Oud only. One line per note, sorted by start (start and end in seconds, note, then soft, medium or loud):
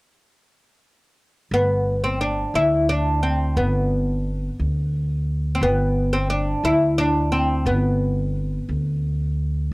1.54 2.05 B3 medium
2.04 2.21 C4 medium
2.21 2.52 D4 medium
2.55 2.89 E4 medium
2.89 3.22 D4 medium
3.23 3.58 C4 medium
3.57 5.23 B3 medium
5.55 5.62 C4 medium
5.63 6.15 B3 medium
6.13 6.30 C4 medium
6.30 6.62 D4 medium
6.65 6.98 E4 medium
6.98 7.31 D4 medium
7.32 7.67 C4 medium
7.67 9.33 B3 medium